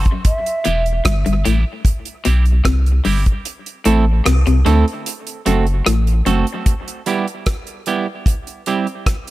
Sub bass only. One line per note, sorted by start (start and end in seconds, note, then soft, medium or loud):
0.67 1.01 E1 loud
1.06 1.24 G1 loud
1.28 1.44 G1 medium
1.47 1.64 A1 medium
2.27 2.61 B1 loud
2.65 3.01 C2 medium
3.06 3.24 G1 loud
3.86 4.21 A1 loud
4.27 4.44 C2 loud
4.47 4.64 C2 medium
4.66 4.84 D2 medium
5.47 5.82 F#1 medium
5.87 6.22 A1 loud
6.27 6.45 F#1 medium